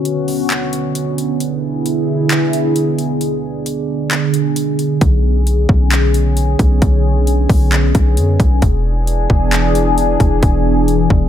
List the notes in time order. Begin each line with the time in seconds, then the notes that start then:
Already playing: D3 B3 C#4 F#4
0.05 closed hi-hat
0.28 open hi-hat
0.50 clap, closed hi-hat
0.73 closed hi-hat
0.95 closed hi-hat
1.18 closed hi-hat
1.40 E4 G#4, closed hi-hat
1.86 closed hi-hat
2.30 clap, closed hi-hat
2.53 closed hi-hat
2.76 closed hi-hat
2.98 closed hi-hat
3.21 D4, closed hi-hat
3.66 closed hi-hat
4.11 clap, closed hi-hat
4.34 closed hi-hat
4.56 closed hi-hat
4.79 closed hi-hat
5.01 B1 C#4, kick, closed hi-hat
5.47 closed hi-hat
5.69 B1, kick
5.92 clap, closed hi-hat
6.14 closed hi-hat
6.37 closed hi-hat
6.59 B1, kick, closed hi-hat
6.82 B1, kick, closed hi-hat
7.27 closed hi-hat
7.49 B1, kick, open hi-hat
7.72 clap, closed hi-hat
7.95 B1, kick, closed hi-hat
8.17 F#2, closed hi-hat
8.40 B1, kick, closed hi-hat
8.62 E1 E3 B3 D4 G#4, kick, closed hi-hat
9.07 closed hi-hat
9.30 E1, kick
9.52 clap, closed hi-hat
9.75 closed hi-hat
9.98 closed hi-hat
10.20 E1, kick, closed hi-hat
10.43 E1, kick, closed hi-hat
10.88 closed hi-hat
11.10 E1, kick